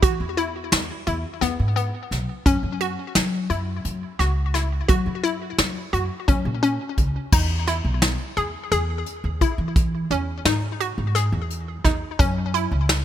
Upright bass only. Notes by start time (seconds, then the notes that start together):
0.03 E3
0.20 E2
0.72 E2
1.07 E2
1.42 E2
1.60 G#2
2.11 B1
2.46 F#2
2.63 F#2
3.15 F#3
3.50 F#2
3.85 F#2
4.19 C#2
4.89 F#3
5.06 F#2
5.58 F#2
5.93 F#2
6.28 F#2
6.45 A#2
6.98 C#2
7.33 E2
7.85 B1
8.37 E2
8.72 E2
9.24 D#2
9.58 E3
10.10 E2
10.45 G#2
10.98 G#2
11.32 E2
11.85 E2
12.19 F#2
12.71 C#2